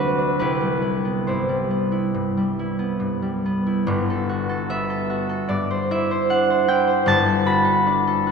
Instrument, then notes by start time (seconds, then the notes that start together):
harp
Already playing: D2 F#3 A3 C4 D4 F#4 A4 B4 C5 D5 E5
0.18 D4
0.39 C2 E4 G4 B4
0.61 G3
0.82 E4
1.05 B3
1.27 G2 E4 G4 C5
1.49 G3
1.70 B3
1.92 E4
2.14 G2
2.37 G3
2.59 E4
2.79 B3
3.00 G2
3.22 G3
3.46 B3
3.67 E4
3.87 G1 G2
4.10 A4
4.29 F#4
4.49 A4
4.70 B3 E5
4.90 A4
5.10 F#4
5.29 A4
5.48 G2 D5
5.71 C5
5.91 E4 E5
6.11 C5
6.30 D4 F#5
6.50 C5
6.68 E4 G5
6.87 C5
7.06 G1 G2 A5
7.26 A4
7.46 F#4 B5
7.64 A4
7.87 D4
8.07 A4
8.27 F#4